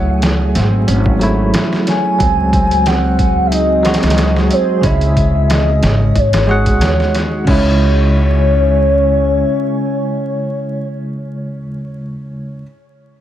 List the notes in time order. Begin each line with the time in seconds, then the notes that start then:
Already playing: C#2 F#3 A3 E4 F#4 G#4 C#5 F#5
0.22 snare, closed hi-hat
0.55 G#1 C4, snare, closed hi-hat
0.88 G#1 C#4, closed hi-hat
1.06 kick
1.19 F#3 A3 E4, closed hi-hat
1.54 E4, snare, closed hi-hat
1.73 snare
1.87 C#5 G#5, snare, closed hi-hat
2.19 C#2 F#3 G#3 C4 G#4, kick, closed hi-hat
2.23 C4
2.53 C4, kick, closed hi-hat
2.71 closed hi-hat
2.86 C4 F#5, snare, closed hi-hat
3.19 kick, closed hi-hat
3.46 E5
3.52 D#4 D#5, closed hi-hat
3.83 F#3 G#3 F#4 C5, snare, closed hi-hat
3.94 snare, closed hi-hat
4.03 C#2, snare, closed hi-hat
4.10 snare, closed hi-hat
4.18 snare, closed hi-hat
4.36 snare
4.51 C4 C5, closed hi-hat
4.81 C#2 C#3 G#3 C#4, kick, closed hi-hat
4.86 E4 E5
5.01 closed hi-hat
5.17 kick, closed hi-hat
5.49 E4 D#5, snare, closed hi-hat
5.83 G#1 C#5, snare, closed hi-hat
6.15 G#1 G#3 D#4 F#4 C#5, kick, closed hi-hat
6.33 snare, closed hi-hat
6.47 G#3 F#4 G#4 F#5
6.66 kick, closed hi-hat
6.81 D#2 C#5, snare, closed hi-hat
7.00 snare
7.14 snare, closed hi-hat
7.45 C#2 C#3 G#3 C#4 C#5 E5 G#5, kick, crash
7.49 E4 C#5